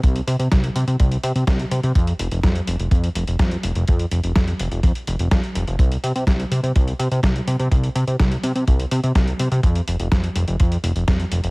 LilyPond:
<<
  \new Staff \with { instrumentName = "Analog synth bass" } { \clef bass \time 4/4 \key f \lydian \tempo 4 = 125 c,16 r16 c16 c16 c,16 r16 c16 c16 c,16 r16 c16 c16 c,16 r16 c16 c16 | f,16 r16 f,,16 f,,16 f,16 r16 f,,16 f,,16 f,16 r16 f,,16 f,,16 f,16 r16 f,,16 f,,16 | f,16 r16 f,,16 f,,16 f,16 r16 f,,16 f,,16 f,16 r16 f,,16 f,,16 f,16 r16 f,,16 f,,16 | c,16 r16 c16 c16 c,16 r16 c16 c16 c,16 r16 c16 c16 c,16 r16 c16 c16 |
c,16 r16 c16 c16 c,16 r16 c16 c16 c,16 r16 c16 c16 c,16 r16 c16 c16 | f,16 r16 f,,16 f,,16 f,16 r16 f,,16 f,,16 f,16 r16 f,,16 f,,16 f,16 r16 f,,16 f,,16 | }
  \new DrumStaff \with { instrumentName = "Drums" } \drummode { \time 4/4 <hh bd>16 hh16 hh16 hh16 <hh bd sn>16 hh16 hh16 hh16 <hh bd>16 hh16 hh16 hh16 <hh bd sn>16 hh16 hh16 hh16 | <hh bd>16 hh16 hh16 hh16 <hh bd sn>16 hh16 hh16 hh16 <hh bd>16 hh16 hh16 hh16 <hh bd sn>16 hh16 hh16 hh16 | <hh bd>16 hh16 hh16 hh16 <hh bd sn>16 hh16 hh16 hh16 <hh bd>16 hh16 hh16 hh16 <hh bd sn>16 hh16 hh16 hh16 | <hh bd>16 hh16 hh16 hh16 <hh bd sn>16 hh16 hh16 hh16 <hh bd>16 hh16 hh16 hh16 <hh bd sn>16 hh16 hh16 hh16 |
<hh bd>16 hh16 hh16 hh16 <hh bd sn>16 hh16 hh16 hh16 <hh bd>16 hh16 hh16 hh16 <hh bd sn>16 hh16 hh16 hh16 | <hh bd>16 hh16 hh16 hh16 <hh bd sn>16 hh16 hh16 hh16 <hh bd>16 hh16 hh16 hh16 <hh bd sn>16 hh16 hh16 hh16 | }
>>